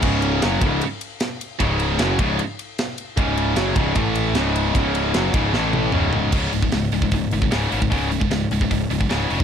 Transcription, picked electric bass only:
\new Staff \with { instrumentName = "Picked electric bass" } { \clef bass \time 4/4 \tempo 4 = 152 cis,,4 fis,,8 cis,,8 r2 | cis,,4 fis,,8 cis,,8 r2 | cis,,4 fis,,8 cis,,8 a,,4 cis,,4 | cis,,4 fis,,8 cis,,8 a,,4 cis,,4 |
cis,,8 cis,,8 cis,,8 cis,,8 cis,,8 gis,,8 cis,,8 gis,,8 | cis,,4 cis,,8 cis,,8 cis,,8 cis,,8 cis,,8 eis,,8 | }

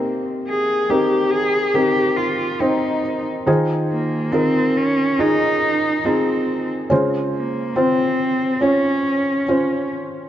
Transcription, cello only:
\new Staff \with { instrumentName = "Cello" } { \time 4/4 \key c \phrygian \tempo 4 = 70 r8 aes'8 g'8 aes'8 g'8 f'8 ees'8. r16 | r8 bes8 c'8 des'8 ees'4 c'8. r16 | r8 bes8 c'4 des'4. r8 | }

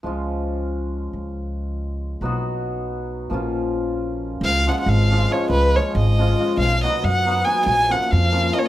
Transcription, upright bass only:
\new Staff \with { instrumentName = "Upright bass" } { \clef bass \time 5/8 \key des \mixolydian \tempo 4 = 138 des,2~ des,8 | des,2~ des,8 | ces,2~ ces,8 | bes,,2~ bes,,8 |
des,4 aes,,4. | des,4 aes,,4. | ces,4 ges,4. | bes,,4 f,4. | }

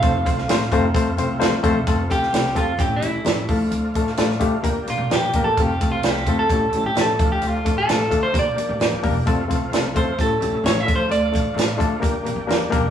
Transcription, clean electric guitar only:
\new Staff \with { instrumentName = "Clean electric guitar" } { \time 4/4 \key f \major \tempo 4 = 130 f''2. r4 | r8 g'4 f'8 \tuplet 3/2 { g'8 e'4~ } e'4 | r2 r8 f'8 \tuplet 3/2 { g'4 a'8 } | \tuplet 3/2 { g'4 f'8 g'4 a'8~ a'4 g'8 a'4 g'8 } |
\tuplet 3/2 { f'4 a'8~ a'4 c''8 } d''2~ | d''8 r4 c''8 a'4 \tuplet 3/2 { cis''8 e''8 c''8 } | d''4. r2 r8 | }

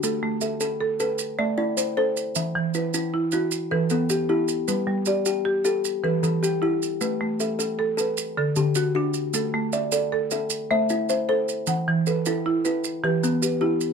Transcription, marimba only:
<<
  \new Staff \with { instrumentName = "Marimba" } { \time 12/8 \key a \dorian \tempo 4. = 103 a'4 e''4. b'4 e''4 c''4. | e''4 b'4. fis'4 b'4 g'4. | b'4 d''4. a'4 b'4 g'4. | b'4 e''4. b'4 a'4 fis'4. |
a'4 e''8 d''4 e''4 c''4 e''4. | fis''4 b'8 a'4 b'4 g'4 b'4. | }
  \new Staff \with { instrumentName = "Marimba" } { \time 12/8 \key a \dorian r8 a4 r8 a'4 r8 a4 r8 a'4 | r8 e4 r8 e'4 r8 e4 r8 e'4 | r8 g4 r8 g'4 r8 e4 r8 e'4 | r8 a4 r8 a'4 r8 d4 r8 d'4 |
r8 a4 r8 a'4 r8 a4 r8 a'4 | r8 e4 r8 e'4 r8 e4 r8 e'4 | }
>>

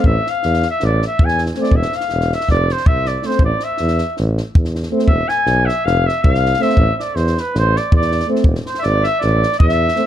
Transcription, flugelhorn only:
\new Staff \with { instrumentName = "Flugelhorn" } { \time 9/8 \key a \minor \tempo 4. = 107 e''8 f''4 e''8 d''8 e''8 gis''8 r8 d''8 | e''8 f''4 e''8 d''8 c''8 e''8 d''8 c''8 | d''8 e''4. r2 r8 | e''8 gis''4 e''8 f''8 e''8 f''4 e''8~ |
e''16. e''32 d''8 c''8 b'8 c''8 d''8 d''4 r8 | r8 c''16. e''32 d''8 e''8 d''4 e''4. | }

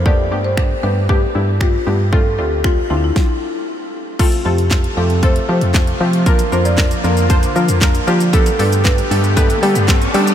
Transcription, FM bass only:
\new Staff \with { instrumentName = "FM bass" } { \clef bass \time 4/4 \key f \major \tempo 4 = 116 f,8 g,4 g,4 g,4 g,8~ | g,8 d,4 d,8 r2 | r8 f,4 f,4 f16 f,8. f8~ | f8 f,4 f,4 f16 f,8. f8~ |
f8 g,4 g,4 g16 g,8. g8 | }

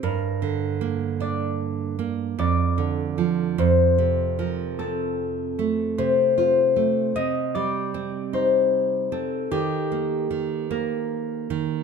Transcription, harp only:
\new Staff \with { instrumentName = "Harp" } { \time 6/8 \key f \mixolydian \tempo 4. = 51 bes'4. d''4. | d''4. c''4 bes'8 | a'4. c''8 c''4 | ees''8 d''4 c''4 a'8 |
g'4. bes'4. | }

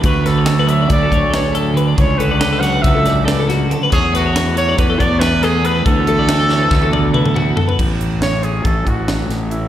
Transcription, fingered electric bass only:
\new Staff \with { instrumentName = "Fingered electric bass" } { \clef bass \time 9/8 \key a \major \tempo 4. = 93 d,2 d,8 d,2 | cis,2 cis,2 r8 | e,2 e,8 e,2 | d,2 d,2 r8 |
a,,2 a,,8 a,,4 a,,4 | }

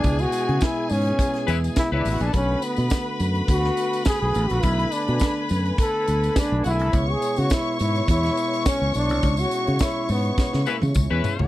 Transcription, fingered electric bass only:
\new Staff \with { instrumentName = "Fingered electric bass" } { \clef bass \time 4/4 \key cis \phrygian \tempo 4 = 104 cis,8 r16 cis16 r8 gis,8 r8 e,8 r16 cis,16 a,,16 ais,,16 | b,,8 r16 b,16 r8 fis,8 d,8 r8. b,,16 a,,16 ais,,16 | b,,8 r16 b,16 r8 fis,8 r8 d,8 r16 b,,16 b,,16 c,16 | cis,8 r16 cis16 r8 gis,8 e,8 r8. cis,16 b,,16 c,16 |
cis,8 r16 cis16 r8 gis,8 r16 cis16 r16 cis16 cis,16 e,16 r16 cis,16 | }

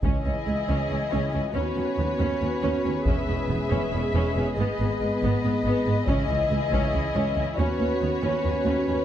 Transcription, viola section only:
\new Staff \with { instrumentName = "Viola section" } { \time 7/8 \key cis \minor \tempo 4 = 139 << { e'2.~ e'8 | fis'2.~ fis'8 | gis'2.~ gis'8~ | gis'2.~ gis'8 |
e'2.~ e'8 | fis'2.~ fis'8 | } \\ { cis'8 cis'8 gis8 cis'8 cis'8 cis'8 cis'8 | cis'8 cis'8 b8 cis'8 cis'8 cis'8 cis'8 | cis'8 cis'8 b8 cis'8 cis'8 cis'8 cis'8 | b8 b8 gis8 b8 b8 b8 b8 |
cis'8 cis'8 gis8 cis'8 cis'8 cis'8 cis'8 | cis'8 cis'8 b8 cis'8 cis'8 cis'8 cis'8 | } >> }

